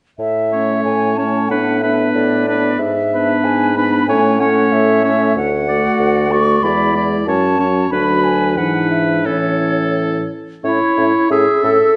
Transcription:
0.18 bassoon A2, flute E5
0.51 french horn A3, clarinet C#4, oboe C#5
0.84 bassoon A2, flute G#5
1.16 french horn A3, clarinet C#4, oboe C#5, flute A5
1.48 bassoon A2, french horn B3, clarinet D4, oboe B4, flute F#5
1.81 french horn B3, clarinet D4, oboe B4, flute E5
2.13 bassoon A2, flute D5
2.48 french horn B3, clarinet D4, oboe B4
2.79 bassoon G#2, flute E5
3.12 french horn B3, clarinet D4, oboe B4
3.44 bassoon G#2, flute G#5
3.75 french horn B3, clarinet D4, oboe B4, flute B5
4.06 bassoon A2, french horn A3, clarinet C#4, oboe C#5, flute G#5
4.39 french horn A3, clarinet C#4, oboe C#5, flute F#5
4.72 bassoon A2, flute E5
5.03 french horn A3, clarinet C#4, oboe C#5
5.36 bassoon D2, flute F#5
5.68 french horn A3, clarinet F#4, oboe D5
5.99 bassoon D2
6.31 french horn A3, clarinet F#4, oboe D5, flute C#6
6.62 bassoon E2, french horn G#3, clarinet E4, oboe D5, flute B5
6.94 french horn G#3, clarinet E4, oboe D5
7.26 bassoon F#2, french horn F#3, clarinet C#4, oboe C#5, flute A5
7.59 french horn F#3, clarinet C#4, oboe C#5
7.89 bassoon D2, french horn F#3, clarinet D4, oboe B4, flute B5
8.23 flute G#5
8.56 bassoon G#2, french horn E3, clarinet D4, oboe B4, flute F#5
8.90 flute E5
9.25 bassoon A2, french horn E3, clarinet C#4, oboe A4, flute C#5
10.63 bassoon A2, french horn C#4, clarinet E4, oboe C#5, flute E5
10.97 bassoon A2, french horn C#4, flute E5
11.29 bassoon A2, french horn C#4, clarinet G#4, flute E5, oboe E5
11.62 bassoon A2, french horn C#4, clarinet A4, flute E5

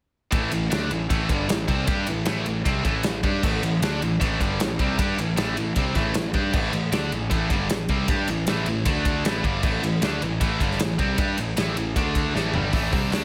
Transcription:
0.32 picked electric bass A1, distorted electric guitar A2 E3 A3, kick, ride
0.51 picked electric bass A1, distorted electric guitar A2 E3, ride
0.70 picked electric bass D2, distorted electric guitar D3 A3 D4, snare, ride
0.90 picked electric bass A1, distorted electric guitar A2 E3, ride
1.09 picked electric bass A1, distorted electric guitar A2 E3 A3, kick, ride
1.29 picked electric bass G1, distorted electric guitar G2 D3 G3, kick, ride
1.49 picked electric bass A1, distorted electric guitar A2 E3, snare, ride
1.68 picked electric bass C2, distorted electric guitar C3 G3 C4, kick, ride
1.86 picked electric bass G2, distorted electric guitar G3 D4 G4, kick, ride
2.07 picked electric bass A1, distorted electric guitar A2 E3, ride
2.25 picked electric bass A1, distorted electric guitar A2 E3 A3, snare, ride
2.46 picked electric bass A1, distorted electric guitar A2 E3, ride
2.66 picked electric bass C2, distorted electric guitar C3 G3 C4, kick, ride
2.84 picked electric bass A1, distorted electric guitar A2 E3 A3, kick, ride
3.03 picked electric bass A1, distorted electric guitar A2 E3, snare, ride
3.23 picked electric bass G2, distorted electric guitar G3 D4 G4, kick, ride
3.43 picked electric bass A1, distorted electric guitar A2 E3 A3, kick, crash
3.62 picked electric bass A1, distorted electric guitar A2 E3, ride
3.82 picked electric bass D2, distorted electric guitar D3 A3 D4, snare, ride
4.01 picked electric bass A1, distorted electric guitar A2 E3, ride
4.20 picked electric bass A1, distorted electric guitar A2 E3 A3, kick, ride
4.40 picked electric bass G1, distorted electric guitar G2 D3 G3, kick, ride
4.60 picked electric bass A1, distorted electric guitar A2 E3, snare, ride
4.79 picked electric bass C2, distorted electric guitar C3 G3 C4, kick, ride
4.98 picked electric bass G2, distorted electric guitar G3 D4 G4, kick, ride
5.17 picked electric bass A1, distorted electric guitar A2 E3, ride
5.36 picked electric bass A1, distorted electric guitar A2 E3 A3, snare, ride
5.56 picked electric bass A1, distorted electric guitar A2 E3, ride
5.76 picked electric bass C2, distorted electric guitar C3 G3 C4, kick, ride
5.95 picked electric bass A1, distorted electric guitar A2 E3 A3, kick, snare, ride
6.14 picked electric bass A1, distorted electric guitar A2 E3, snare, ride
6.34 picked electric bass G2, distorted electric guitar G3 D4 G4, kick, ride
6.53 picked electric bass A1, distorted electric guitar A2 E3 A3, kick, crash
6.73 picked electric bass A1, distorted electric guitar A2 E3, ride
6.92 picked electric bass D2, distorted electric guitar D3 A3 D4, snare, ride
7.11 picked electric bass A1, distorted electric guitar A2 E3, ride
7.30 picked electric bass A1, distorted electric guitar A2 E3 A3, kick, ride
7.49 picked electric bass G1, distorted electric guitar G2 D3 G3, kick, ride
7.70 picked electric bass A1, distorted electric guitar A2 E3, snare, ride
7.89 picked electric bass C2, distorted electric guitar C3 G3 C4, kick, ride
8.08 picked electric bass G2, distorted electric guitar G3 D4 G4, kick, ride
8.28 picked electric bass A1, distorted electric guitar A2 E3, ride
8.47 picked electric bass A1, distorted electric guitar A2 E3 A3, snare, ride
8.66 picked electric bass A1, distorted electric guitar A2 E3, ride
8.86 picked electric bass D2, distorted electric guitar D3 A3 D4, kick, ride
9.05 kick, ride
9.25 picked electric bass A1, distorted electric guitar A2 E3 A3, snare, ride
9.44 picked electric bass G1, distorted electric guitar G2 D3 G3, kick, ride
9.63 picked electric bass A1, distorted electric guitar A2 E3 A3, kick, crash
9.82 picked electric bass A1, distorted electric guitar A2 E3, ride
10.02 picked electric bass D2, distorted electric guitar D3 A3 D4, snare, ride
10.21 picked electric bass A1, distorted electric guitar A2 E3, ride
10.41 picked electric bass A1, distorted electric guitar A2 E3 A3, kick, ride
10.60 picked electric bass G1, distorted electric guitar G2 D3 G3, kick, ride
10.71 snare
10.79 picked electric bass A1, distorted electric guitar A2 E3, snare, ride
10.99 picked electric bass C2, distorted electric guitar C3 G3 C4, kick, ride
11.18 picked electric bass G2, distorted electric guitar G3 D4 G4, kick, ride
11.37 picked electric bass A1, distorted electric guitar A2 E3, ride
11.57 picked electric bass A1, distorted electric guitar A2 E3 A3, snare, ride
11.76 picked electric bass A1, distorted electric guitar A2 E3, ride
11.96 picked electric bass D2, distorted electric guitar D3 A3 D4, kick, ride
12.15 kick, ride
12.35 picked electric bass A1, distorted electric guitar A2 E3 A3, snare
12.54 picked electric bass G1, distorted electric guitar G2 D3 G3, floor tom
12.73 picked electric bass A1, distorted electric guitar A2 E3 A3, kick, open hi-hat
12.92 picked electric bass C2, distorted electric guitar C3 G3 C4, kick, open hi-hat
13.11 picked electric bass D2, distorted electric guitar D3 A3 D4, snare, open hi-hat

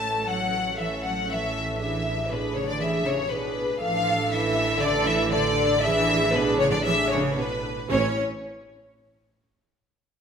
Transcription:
Already playing: double bass section A1, cello section A3, viola section C#4 A4, violin section A5
0.28 cello section F#3, violin section F#5
0.78 cello section E3, viola section C#4 A4, violin section E5
1.03 cello section F#3, violin section F#5
1.28 cello section E3, viola section C#4 A4, violin section E5
1.79 cello section E3, viola section D4 G#4, violin section E5
2.29 cello section B2, viola section D4 G#4, violin section B4
2.54 cello section C#3, violin section C#5
2.67 cello section D3, violin section D5
2.79 cello section E3, viola section D4 G#4, violin section E5
3.05 cello section C#3, violin section C#5
3.29 cello section B2, viola section D4 G#4, violin section B4
3.80 double bass section A1, cello section F3, viola section D4 A4, violin section F5
4.30 cello section E3, violin section E5
4.81 cello section D3, viola section D4 A4, violin section D5
5.06 cello section E3, violin section E5
5.31 cello section D3, viola section D4 A4, violin section D5
5.82 cello section E3, viola section D4 G#4, violin section E5
6.32 cello section B2, viola section D4 G#4, violin section B4
6.58 cello section C#3, violin section C#5
6.71 cello section D3, violin section D5
6.84 cello section E3, viola section D4 G#4, violin section E5
7.11 cello section C#3, violin section C#5
7.37 cello section B2, viola section D4 G#4, violin section B4
7.89 double bass section A1, cello section C#4, viola section C#4 E4, violin section C#5

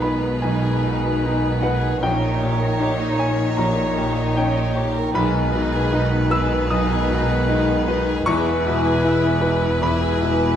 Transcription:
Already playing: grand piano B1 B2 D#4 D#5, double bass section B1, cello section B2, bassoon D#3, french horn section G#3 D#4, viola section D#4, clarinet B4, violin section B4, flute section G#5
0.02 violin section G#3, grand piano B4 B5
0.22 violin section B3
0.42 grand piano B1 G#5, bassoon D#3, violin section D#4, clarinet B4, flute section G#5
0.62 violin section G#4
0.82 grand piano B2, violin section D#4
1.02 violin section B3
1.21 violin section G#3, grand piano D#4
1.42 violin section B3
1.61 violin section D#4, grand piano B4 F#5
1.80 violin section G#4
2.01 grand piano A#1 G5, double bass section A#1, cello section A#2, bassoon D#3, french horn section A#3 D#4, violin section C#4 C#5, viola section D#4, clarinet C#5, flute section A#5
2.22 violin section D#4
2.40 grand piano A#2, violin section G4
2.60 violin section A#4
2.80 grand piano D#4, violin section G4
2.99 violin section D#4
3.18 violin section C#4, grand piano C#5 G#5
3.38 violin section D#4
3.57 grand piano A#1 A#5, bassoon D#3, violin section G4, clarinet C#5, flute section A#5
3.77 violin section A#4
3.98 grand piano A#2, violin section G4
4.18 violin section D#4
4.37 bassoon D#3, violin section C#4, grand piano D#4 G5, clarinet C#5, flute section A#5
4.56 violin section D#4
4.76 violin section G4, grand piano C#5
4.96 violin section A#4
5.14 double bass section B1, grand piano B1 B5, cello section B2, bassoon D#3, violin section G#3 B4, french horn section G#3 D#4, viola section D#4, clarinet B4, flute section G#5
5.35 violin section B3
5.53 grand piano B2, violin section D#4
5.73 violin section G#4
5.93 grand piano D#4, violin section D#4
6.12 violin section B3
6.30 violin section G#3, grand piano B4 E6
6.51 violin section B3
6.70 grand piano B1 D#6, bassoon D#3, french horn section G#3 D#4, violin section D#4, clarinet B4, flute section G#5
6.90 violin section G#4
7.10 grand piano B2, violin section D#4
7.30 violin section B3
7.49 violin section G#3, grand piano D#4
7.68 violin section B3
7.88 violin section D#4, grand piano B4
8.08 violin section G#4
8.26 double bass section E1, cello section E2, grand piano E2 C#6, bassoon E3, violin section G#3 B4, french horn section G#3 E4, viola section E4, clarinet B4, flute section G#5
8.47 violin section B3
8.66 grand piano B2, violin section E4
8.87 violin section G#4
9.05 grand piano E4, violin section E4
9.26 violin section B3
9.41 grand piano B4
9.46 violin section G#3
9.63 violin section B3
9.81 grand piano E2 B5, bassoon E3, french horn section G#3 E4, violin section E4, clarinet B4, flute section G#5
10.03 violin section G#4
10.21 grand piano B2, violin section E4
10.44 violin section B3

